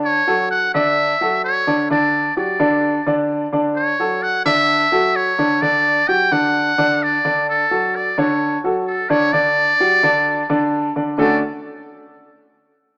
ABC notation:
X:1
M:4/4
L:1/8
Q:1/4=129
K:D
V:1 name="Muted trumpet"
c2 f e3 c2 | d2 d4 z2 | c2 f e3 c2 | d2 g f3 d2 |
A2 d c2 z A c | d6 z2 | d z6 z |]
V:2 name="Grand piano"
[D,Dd] [F,FA]2 [D,Dd]2 [F,FA]2 [D,Dd] | [D,Dd]2 [F,FG] [D,Dd]2 [D,Dd]2 [D,Dd]- | [D,Dd] [F,FA]2 [D,Dd]2 [F,FA]2 [D,Dd] | [D,Dd]2 [F,FG] [D,Dd]2 [D,Dd]2 [D,Dd]- |
[D,Dd] [F,FA]2 [D,Dc]2 [F,FA]2 [D,Dd] | [D,Dd]2 [F,FG] [D,Dd]2 [D,Dd]2 [D,Dd] | [D,A,CDFA] z6 z |]